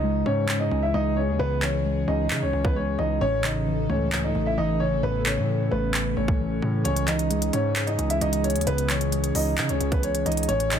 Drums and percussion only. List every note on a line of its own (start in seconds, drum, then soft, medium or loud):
0.49 clap loud
1.62 clap medium
2.30 clap loud
2.65 kick loud
3.44 clap loud
4.12 clap loud
5.26 clap loud
5.94 clap loud
6.28 kick loud
6.85 closed hi-hat medium
6.96 closed hi-hat medium
7.08 clap medium
7.08 closed hi-hat medium
7.19 closed hi-hat medium
7.31 closed hi-hat medium
7.42 closed hi-hat medium
7.53 closed hi-hat medium
7.76 clap loud
7.76 closed hi-hat medium
7.87 closed hi-hat medium
7.99 closed hi-hat medium
8.10 closed hi-hat medium
8.21 closed hi-hat medium
8.33 closed hi-hat medium
8.44 closed hi-hat soft
8.50 closed hi-hat medium
8.56 closed hi-hat medium
8.61 closed hi-hat medium
8.67 closed hi-hat medium
8.78 closed hi-hat medium
8.90 clap loud
8.90 closed hi-hat medium
9.01 closed hi-hat medium
9.12 closed hi-hat medium
9.24 closed hi-hat medium
9.35 open hi-hat medium
9.58 clap loud
9.58 closed hi-hat medium
9.69 closed hi-hat soft
9.81 closed hi-hat medium
9.92 kick loud
9.92 closed hi-hat medium
10.03 closed hi-hat medium
10.15 closed hi-hat medium
10.26 closed hi-hat soft
10.32 closed hi-hat medium
10.37 closed hi-hat medium
10.43 closed hi-hat medium
10.49 closed hi-hat medium
10.60 closed hi-hat medium
10.71 clap loud
10.71 closed hi-hat medium